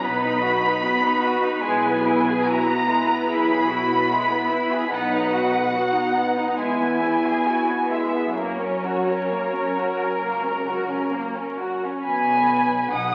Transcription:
0.03 double bass section B1, violin section B3 B4 B5, viola section B3 D#4, cello section D#4
0.23 violin section D#4
0.43 violin section F#4
0.64 violin section D#4
0.84 violin section B3, cello section F#4
1.04 violin section D#4
1.24 violin section F#4
1.42 violin section D#4
1.64 double bass section B1, violin section G#3 G#5, viola section E4, cello section G#4
1.84 violin section B3
2.05 violin section E4
2.27 violin section G#4
2.44 violin section E4 A#5, cello section F#4
2.66 violin section B3
2.88 violin section G#3, cello section E4
3.08 violin section B3
3.27 double bass section B1, violin section E4 B5, cello section G#4
3.50 violin section G#4
3.68 violin section E4, cello section F#4
3.91 violin section B3
4.10 violin section G#3, cello section E4
4.30 violin section B3
4.50 violin section E4
4.70 violin section G#4
4.90 double bass section B1, violin section B3 B4 F#5, viola section B3 D#4, cello section D#4
5.11 violin section D#4
5.31 violin section F#4
5.51 violin section B4
5.72 violin section F#4, cello section F#4
5.91 violin section D#4
6.13 violin section B3, cello section D#4
6.37 violin section D#4
6.58 double bass section E2, violin section G#3 G#5, viola section E4, cello section E4
6.79 violin section B3
7.01 violin section E4
7.25 violin section G#4
7.46 violin section E4, cello section F#4
7.68 violin section B3
7.91 violin section G#3 E5, cello section G#4
8.13 violin section B3
8.37 double bass section F#2, viola section F#3 C#4, violin section A#3 C#5, cello section A#4
8.59 violin section C#4
8.84 violin section F#4
9.06 violin section C#4
9.30 violin section A#3 A#4
9.53 violin section C#4
9.76 violin section F#4
10.00 violin section C#4
10.23 double bass section C#2, violin section A#3
10.43 violin section C#4
10.66 violin section F#4
10.89 violin section C#4
11.13 violin section A#3
11.35 violin section C#4
11.59 violin section F#4
11.83 violin section C#4
12.03 double bass section B1, cello section B2, viola section B3, violin section G#5 B5
12.91 double bass section B1, cello section B2, viola section D#4, violin section F#5 D#6

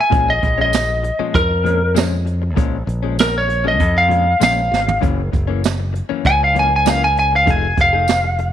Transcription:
0.01 lead electric guitar G#5
0.10 fingered electric bass A#1, clean electric guitar A#2 F3 G#3 C#4, kick, closed hi-hat
0.30 lead electric guitar D#5
0.41 fingered electric bass A#1, muted clean electric guitar stroke, kick, closed hi-hat
0.58 clean electric guitar F3 G#3 C#4, lead electric guitar D#5
0.73 muted clean electric guitar stroke, snare, closed hi-hat, tambourine
0.89 muted clean electric guitar stroke
1.03 muted clean electric guitar stroke, closed hi-hat
1.19 clean electric guitar A#2 F3 G#3 C#4, muted fingered electric bass stroke
1.34 fingered electric bass F2, lead electric guitar A#4, kick, closed hi-hat
1.50 muted clean electric guitar stroke
1.64 clean electric guitar A#2 F3 G#3 C#4, closed hi-hat
1.81 muted clean electric guitar stroke
1.95 clean electric guitar A#2 F3 G#3 C#4, snare, closed hi-hat, tambourine
2.25 muted clean electric guitar stroke, closed hi-hat
2.42 muted clean electric guitar stroke
2.56 fingered electric bass A#1, clean electric guitar A#2 F3 G#3 C#4, kick, closed hi-hat
2.87 fingered electric bass A#1, muted clean electric guitar stroke, closed hi-hat
3.03 clean electric guitar F3 G#3 C#4
3.17 lead electric guitar A#4, muted clean electric guitar stroke, snare, closed hi-hat, tambourine
3.33 muted clean electric guitar stroke
3.38 lead electric guitar C#5
3.48 muted clean electric guitar stroke, closed hi-hat
3.64 clean electric guitar A#2 F3 G#3 C#4, lead electric guitar D#5
3.80 fingered electric bass F2, kick, closed hi-hat
3.95 lead electric guitar F5, muted clean electric guitar stroke
4.08 clean electric guitar A#2 F3 G#3 C#4, closed hi-hat
4.25 muted clean electric guitar stroke
4.40 fingered electric bass A#1, clean electric guitar A#2 F3 G#3 C#4, lead electric guitar F5, snare, closed hi-hat, tambourine
4.71 fingered electric bass G#1, muted clean electric guitar stroke, snare
4.87 muted clean electric guitar stroke, floor tom
5.01 fingered electric bass F#1, clean electric guitar F#2 E3 A#3 C#4, kick, closed hi-hat
5.32 fingered electric bass F#1, muted clean electric guitar stroke, kick, closed hi-hat
5.47 clean electric guitar E3 A#3 C#4
5.63 muted clean electric guitar stroke, snare, closed hi-hat, tambourine
5.79 muted clean electric guitar stroke
5.93 muted clean electric guitar stroke, closed hi-hat
6.09 clean electric guitar F#2 E3 A#3 C#4, muted fingered electric bass stroke
6.25 fingered electric bass C#2, lead electric guitar G#5, kick, closed hi-hat
6.40 lead electric guitar F5, muted clean electric guitar stroke
6.54 clean electric guitar F#2 E3 A#3 C#4, closed hi-hat
6.59 lead electric guitar G#5
6.71 muted clean electric guitar stroke
6.76 lead electric guitar G#5
6.85 clean electric guitar F#2 E3 A#3 C#4, snare, closed hi-hat, tambourine
6.90 lead electric guitar F5
7.04 lead electric guitar G#5
7.16 lead electric guitar G#5, muted clean electric guitar stroke, closed hi-hat
7.32 muted clean electric guitar stroke
7.36 lead electric guitar F5
7.46 fingered electric bass F1, clean electric guitar F3 A3 D#4 G#4, kick, closed hi-hat
7.50 lead electric guitar G#5
7.77 fingered electric bass F1, muted clean electric guitar stroke, kick, closed hi-hat
7.81 lead electric guitar F5
7.93 clean electric guitar A3 D#4 G#4
8.08 muted clean electric guitar stroke, snare, closed hi-hat, tambourine
8.24 muted clean electric guitar stroke
8.38 muted clean electric guitar stroke, closed hi-hat

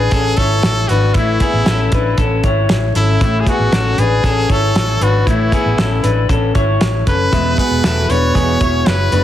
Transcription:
Already playing: clean electric guitar D4 B4, trumpet G#4
0.11 fingered electric bass A1, clean electric guitar C#4 A4, kick, closed hi-hat
0.37 fingered electric bass G#1, clean electric guitar E4 C#5, trumpet A4, kick, closed hi-hat
0.63 fingered electric bass A1, snare, closed hi-hat
0.88 fingered electric bass G#1, clean electric guitar D4 B4, trumpet F#4, closed hi-hat
1.14 fingered electric bass A1, clean electric guitar A3 E4, trumpet E4, kick, closed hi-hat
1.40 clean electric guitar B3 G#4, kick, closed hi-hat
1.53 fingered electric bass A1
1.66 fingered electric bass A1, clean electric guitar C#4 A4, snare, closed hi-hat
1.92 fingered electric bass A1, clean electric guitar D4 B4, kick, closed hi-hat
2.18 fingered electric bass A1, clean electric guitar C#4 A4, kick, closed hi-hat
2.44 fingered electric bass G#1, clean electric guitar E4 C#5, kick, closed hi-hat
2.69 fingered electric bass A1, snare, closed hi-hat
2.95 fingered electric bass G#1, clean electric guitar C#4 A4, trumpet E4, closed hi-hat
3.21 fingered electric bass A1, clean electric guitar A3 E4, kick, closed hi-hat
3.40 trumpet G#4
3.47 clean electric guitar B3 G#4, trumpet F#4, kick, closed hi-hat
3.59 fingered electric bass A1
3.72 fingered electric bass A1, clean electric guitar C#4 A4, snare, closed hi-hat
3.98 fingered electric bass A1, clean electric guitar D4 B4, trumpet G#4, closed hi-hat
4.24 fingered electric bass A1, clean electric guitar C#4 A4, kick, closed hi-hat
4.50 fingered electric bass G#1, clean electric guitar E4 C#5, trumpet A4, kick, closed hi-hat
4.75 fingered electric bass A1, snare, closed hi-hat
5.01 fingered electric bass G#1, clean electric guitar D4 B4, trumpet F#4, closed hi-hat
5.26 fingered electric bass A1, clean electric guitar A3 E4, trumpet E4, kick, closed hi-hat
5.52 clean electric guitar B3 G#4, kick, closed hi-hat
5.66 fingered electric bass A1
5.78 fingered electric bass A1, clean electric guitar C#4 A4, snare, closed hi-hat
6.03 fingered electric bass A1, clean electric guitar D4 B4, closed hi-hat
6.29 fingered electric bass A1, clean electric guitar C#4 A4, kick, closed hi-hat
6.55 fingered electric bass G#1, clean electric guitar E4 C#5, kick, closed hi-hat
6.81 fingered electric bass A1, snare, closed hi-hat
7.07 fingered electric bass F#1, clean electric guitar C#4 A4, trumpet B4, kick, closed hi-hat
7.32 fingered electric bass E1, steel-string acoustic guitar E3 G#3 B3 F#4, clean electric guitar G#3 E4, kick, closed hi-hat
7.57 steel-string acoustic guitar G#3 B3 F#4, clean electric guitar B3 G#4, trumpet B4, kick, closed hi-hat
7.71 fingered electric bass E1
7.83 fingered electric bass E1, steel-string acoustic guitar E3 G#3 B3 F#4, clean electric guitar E4 A4, snare, closed hi-hat
8.09 fingered electric bass E1, steel-string acoustic guitar G#3 B3 F#4, clean electric guitar D4 B4, trumpet C#5, closed hi-hat
8.35 fingered electric bass E1, steel-string acoustic guitar E3 G#3 B3 F#4, clean electric guitar B3 G#4, kick, closed hi-hat
8.60 fingered electric bass E1, steel-string acoustic guitar G#3 B3 F#4, clean electric guitar E4 C#5, kick, closed hi-hat
8.85 fingered electric bass F#1, steel-string acoustic guitar E3 G#3 B3 F#4, trumpet B4, snare, closed hi-hat
9.11 fingered electric bass F#1, steel-string acoustic guitar G#3 B3 F#4, clean electric guitar D4 B4, closed hi-hat

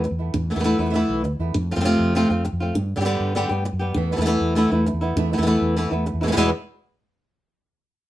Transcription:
0.04 muted nylon-string guitar stroke
0.11 fretless electric bass E2
0.19 nylon-string guitar A3 B3 E4
0.34 fretless electric bass E2, muted nylon-string guitar stroke
0.50 nylon-string guitar E3 A3 B3 E4
0.55 fretless electric bass E2, nylon-string guitar E3 A3 B3 E4
0.59 nylon-string guitar E3 A3 B3 E4
0.64 nylon-string guitar E3 A3 B3 E4
0.79 fretless electric bass E2, nylon-string guitar E3 A3 B3 E4
0.85 nylon-string guitar E3 A3 B3 E4
0.91 nylon-string guitar E3 A3 B3 E4
0.95 nylon-string guitar B3 E4
1.09 fretless electric bass B1
1.24 fretless electric bass D2, muted nylon-string guitar stroke
1.39 fretless electric bass E2, nylon-string guitar A3 B3 E4
1.54 fretless electric bass F2, muted nylon-string guitar stroke
1.71 nylon-string guitar F3 A3 C4 F4
1.76 fretless electric bass F2, nylon-string guitar F3 A3 C4 F4
1.80 nylon-string guitar C3 F3 A3 C4 F4
1.85 nylon-string guitar F3 A3 C4 F4
2.00 fretless electric bass F2
2.15 nylon-string guitar C3 F3 A3 C4 F4
2.30 fretless electric bass F2, nylon-string guitar A3 C4 F4
2.45 muted nylon-string guitar stroke
2.53 fretless electric bass F2
2.60 nylon-string guitar A3 C4 F4
2.75 fretless electric bass G2, muted nylon-string guitar stroke
2.96 fretless electric bass G2, nylon-string guitar D3 G3 B3 G4
3.01 nylon-string guitar D3 G3 B3 G4
3.05 nylon-string guitar D3 G3 B3 G4
3.20 fretless electric bass G2
3.35 nylon-string guitar D3 G3 B3 G4
3.49 fretless electric bass G2, nylon-string guitar G3 B3 G4
3.65 muted nylon-string guitar stroke
3.73 fretless electric bass F#2
3.79 nylon-string guitar G3 B3 G4
3.94 fretless electric bass E2, nylon-string guitar E3 A3 B3 E4, muted nylon-string guitar stroke
4.12 nylon-string guitar E3 A3 B3 E4
4.16 fretless electric bass E2, nylon-string guitar E3 A3 B3 E4
4.21 nylon-string guitar E3 A3 B3 E4
4.25 nylon-string guitar E3 A3 B3 E4
4.41 fretless electric bass E2
4.55 nylon-string guitar E3 A3 B3 E4, muted nylon-string guitar stroke
4.71 fretless electric bass E2, nylon-string guitar A3 B3 E4
4.86 muted nylon-string guitar stroke
4.93 fretless electric bass E2
5.01 nylon-string guitar A3 B3 E4
5.16 fretless electric bass E2, nylon-string guitar E3 A3 B3 E4, muted nylon-string guitar stroke
5.33 nylon-string guitar E3 A3 B3 E4
5.38 fretless electric bass E2, nylon-string guitar E3 A3 B3 E4
5.42 nylon-string guitar E3 A3 B3 E4
5.47 nylon-string guitar E3 A3 B3 E4
5.61 fretless electric bass E2
5.76 nylon-string guitar E3 A3 B3 E4, muted nylon-string guitar stroke
5.91 fretless electric bass E2, nylon-string guitar A3 B3 E4
6.06 muted nylon-string guitar stroke
6.14 fretless electric bass E2
6.21 nylon-string guitar B2 E3 G#3 A3 B3 E4
6.27 nylon-string guitar B2 E3 G#3 B3 E4
6.32 nylon-string guitar B2 E3 G#3 B3 E4
6.36 nylon-string guitar E2 B2 E3 G#3 B3 E4, fretless electric bass E2

